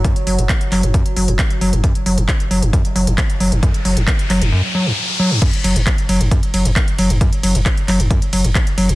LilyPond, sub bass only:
\new Staff \with { instrumentName = "Sub bass" } { \clef bass \time 4/4 \key g \lydian \tempo 4 = 134 r8 fis,,16 fis,,16 r8 fis,,16 fis,,16 r8 fis,,16 fis,,16 r8 fis,,16 fis,,16 | r8 fis,,16 fis,,16 r8 fis,,16 fis,,16 r8 fis,,16 fis,,16 r8 fis,,16 fis,,16 | r8 fis,,16 fis,,16 r8 fis,,16 fis,,16 r2 | r8 fis,,16 fis,,16 r8 fis,,16 fis,,16 r8 fis,,16 fis,,16 r8 fis,,16 fis,,16 |
r8 fis,,16 fis,,16 r8 fis,,16 fis,,16 r8 fis,,16 fis,,16 r8 fis,,16 fis,,16 | }